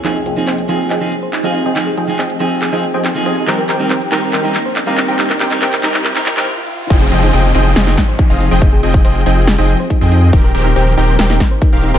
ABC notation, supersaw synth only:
X:1
M:4/4
L:1/16
Q:1/4=140
K:Fm
V:1 name="Supersaw synth"
[F,CAeg]2 [F,CAeg]2 [F,CAeg]2 [F,CAeg]2 [F,CAeg]2 z3 [F,CAef]2 [F,CAeg]- | [F,CAeg]2 [F,CAeg]2 [F,CAeg]2 [F,CAeg]3 [F,CAeg]2 [F,CAeg] z2 [F,CAea]2 | [E,CGBg]2 [E,CGBg]2 [E,CGBg]2 [E,CGBg]2 [E,CGBg]2 z3 [E,CGBf]2 [E,CGBg]- | [E,CGBg]2 [E,CGBg]2 [E,CGBg]2 [E,CGBg]3 [E,CGBg]2 [E,CGBg] z4 |
[F,CAeg]2 [F,CAeg]2 [F,CAeg]2 [F,CAeg]2 [F,CAeg]2 z3 [F,CAef]2 [F,CAeg]- | [F,CAeg]2 [F,CAeg]2 [F,CAeg]2 [F,CAeg]3 [F,CAeg]2 z2 [F,CAeg]3 | [E,CGBg]2 [E,CGBg]2 [E,CGBg]2 [E,CGBg]2 [E,CGBg]2 z3 [E,CGBf]2 [E,CGBg] |]